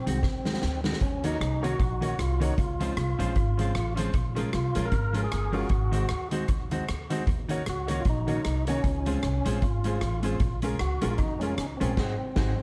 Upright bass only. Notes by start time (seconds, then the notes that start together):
0.07 C2
0.24 D#2
0.63 D2
1.02 D#2
1.40 C2
1.79 A#1
2.19 C2
2.58 C#2
2.97 C2
3.19 A#1
3.36 G#1
3.76 A1
4.14 A#1
4.54 C2
4.76 A#1
4.92 G#1
5.32 G1
5.70 G#1
6.11 D#2
6.49 D#2
6.89 D2
7.27 D#2
7.67 C#2
8.05 A#1
8.45 C2
8.84 C#2
9.23 C2
9.46 A#1
9.62 G#1
10.01 A1
10.41 A#1
10.80 C#2
11.04 A#1
11.19 F2
11.58 C#2
11.81 A#1
11.97 G#1
12.37 G#1